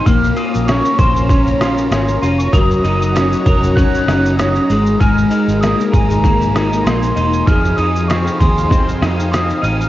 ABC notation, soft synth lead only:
X:1
M:4/4
L:1/16
Q:"Swing 16ths" 1/4=97
K:Ab
V:1 name="Soft synth lead"
f'2 e'2 d'2 c'4 c'4 c' d' | e'3 e'4- e' _g'2 z2 e'4 | f'4 e'2 b6 c'4 | f'2 e'2 d'2 c'6 e'2 f'2 |]